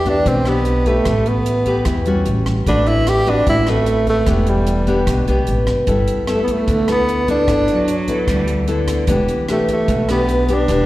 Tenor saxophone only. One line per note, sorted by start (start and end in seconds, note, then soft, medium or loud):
0.00 0.10 G4 medium
0.09 0.29 D4 medium
0.27 0.50 C4 medium
0.48 0.89 B3 medium
0.88 1.30 A3 medium
1.29 2.08 B3 medium
2.69 2.89 D4 medium
2.88 3.10 E4 medium
3.08 3.31 G4 loud
3.30 3.48 D4 loud
3.49 3.71 E4 loud
3.70 4.09 A3 loud
4.09 4.51 A3 medium
4.49 5.28 G3 medium
6.34 6.43 A3 medium
6.43 6.53 B3 medium
6.52 6.90 A3 medium
6.92 7.27 B3 medium
7.31 8.05 D4 medium
9.51 9.69 A3 medium
9.72 10.08 A3 medium
10.11 10.54 B3 medium
10.53 10.86 D4 medium